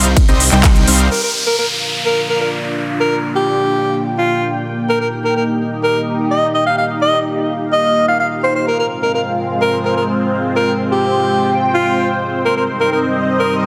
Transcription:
Already playing: analog synth bass C2
0.05 closed hi-hat
0.17 kick, closed hi-hat, ride
0.28 analog synth bass C2, supersaw synth G3 C4 D#4 C5 D#5, closed hi-hat
0.40 open hi-hat
0.52 analog synth bass C2, supersaw synth G3 C4 D#4 C5 G5, clap, closed hi-hat
0.64 kick, clap, closed hi-hat, ride
0.76 closed hi-hat
0.87 analog synth bass C2, supersaw synth G3 C4 D#4 C5 F5, open hi-hat
0.99 closed hi-hat
1.11 analog synth pad A#3 D4 F4 D5 F5, alto saxophone A#4, downlifter
1.23 alto saxophone A#4
1.47 alto saxophone A#4
1.58 alto saxophone A#4
2.06 alto saxophone A#4
2.29 alto saxophone A#4
2.41 alto saxophone A#4
3.00 alto saxophone A#4, analog synth pad G5
3.36 alto saxophone G4
4.18 alto saxophone F4
4.89 analog synth pad D#4 G4 D#5, alto saxophone A#4
5.01 alto saxophone A#4
5.24 alto saxophone A#4
5.36 alto saxophone A#4
5.83 alto saxophone A#4
6.31 alto saxophone D#5
6.54 alto saxophone D#5
6.66 alto saxophone F5
6.78 alto saxophone F5, analog synth pad F5
7.02 alto saxophone D#5
7.73 alto saxophone D#5
8.08 alto saxophone F5
8.20 alto saxophone F5
8.43 alto saxophone C5
8.55 alto saxophone C5
8.67 analog synth pad G#3 C4 F4 C5, alto saxophone A#4
8.79 alto saxophone A#4
9.02 alto saxophone A#4
9.14 alto saxophone A#4
9.62 alto saxophone A#4
9.85 alto saxophone A#4
9.97 alto saxophone A#4
10.56 alto saxophone A#4, analog synth pad G5
10.91 alto saxophone G4
11.74 alto saxophone F4
12.45 analog synth pad G3 C4 D#4 D#5, alto saxophone A#4
12.57 alto saxophone A#4
12.80 alto saxophone A#4
12.92 alto saxophone A#4
13.39 alto saxophone A#4

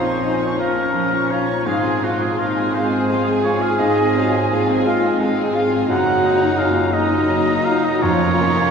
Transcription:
Already playing: double bass section A#1, grand piano F3 F4, bassoon F3, french horn section C4, cello section D#4, clarinet D#4, oboe C5, flute section A#5
0.04 viola section A#3, violin section C#4 C#6
0.22 viola section C#4, grand piano D#4, violin section F4 A#5, flute section G#5
0.40 viola section A#3, violin section C#4 C#6
0.56 french horn section A#3, viola section C#4, cello section C#4, clarinet C#4, violin section F4 A#5, grand piano F4, oboe A#4, flute section A#5
0.76 viola section A#3, violin section C#4 C#6
0.93 grand piano F3, viola section C#4, violin section F4 A#5
1.12 viola section A#3, violin section C#4 C#6
1.28 french horn section C#4, viola section C#4, violin section F4 A#5, grand piano F4, oboe C#5
1.47 viola section A#3, violin section C#4 C#6
1.65 double bass section G#1, grand piano G#2, bassoon F3, viola section G#3, french horn section G#3, cello section F4, clarinet F4, violin section F4 F5, oboe G#4, flute section C6
1.83 viola section C4, violin section G#4 G#5
2.02 french horn section F#3, viola section G#3, grand piano F4, violin section F4 F5, oboe F#4
2.20 french horn section G#3, viola section C4, oboe G#4, violin section G#4 G#5
2.38 viola section G#3, french horn section A#3, grand piano D#4, violin section F4 F5, oboe A#4
2.57 viola section C4, violin section G#4 G#5
2.73 bassoon G#3, viola section G#3, french horn section C4, violin section F4 F5, grand piano F4, cello section G#4, oboe C5, flute section G#5
2.91 viola section C4, violin section G#4 G#5
3.08 viola section G#3, grand piano G#3, violin section F4 F5
3.26 viola section C4, violin section G#4 G#5
3.43 viola section G#3, french horn section C#4, violin section F4 F5, grand piano F4, oboe C#5
3.61 viola section C4, french horn section F4, violin section G#4 G#5, oboe F5
3.78 grand piano G#2, viola section G#3, bassoon G#3, clarinet C4, french horn section D#4, violin section F4 F5, oboe D#5
3.97 viola section C4, violin section G#4 G#5
4.15 bassoon F#3, viola section G#3, grand piano C4, violin section F4 F5
4.33 viola section C4, violin section G#4 G#5
4.51 bassoon F3, viola section G#3, grand piano A#3, violin section F4 F5
4.68 viola section C4, violin section G#4 G#5
4.85 bassoon G#3, viola section G#3, cello section F4, french horn section F4, grand piano F4, violin section F4 F5, oboe F5
5.03 viola section C4, violin section G#4 G#5
5.19 viola section G#3, grand piano G#3, cello section D#4, violin section F4 F5
5.36 viola section C4, violin section G#4 G#5
5.53 viola section G#3, grand piano F4, cello section F4, violin section F4 F5
5.70 viola section C4, violin section G#4 G#5
5.87 double bass section F#1, grand piano F#2, bassoon F#3, viola section A#3, cello section D#4, violin section D#4 A#5, clarinet D#4, french horn section F#4, oboe F#5, flute section A#5
6.25 grand piano D#4
6.58 grand piano C#4, french horn section F4, oboe F5
6.93 bassoon F#3, viola section A#3, cello section D#4, french horn section D#4, violin section D#4 A#5, grand piano D#4, oboe D#5, flute section A#5
7.29 grand piano F#3
7.65 grand piano D#4, french horn section F4, oboe F5
7.85 french horn section D#4, oboe D#5
8.02 double bass section F1, grand piano F2, bassoon F3, viola section A#3, french horn section C#4, cello section F4, clarinet F4, violin section F4 A#5, oboe C#5, flute section A#5
8.40 bassoon D#3, grand piano A#3, cello section C#4

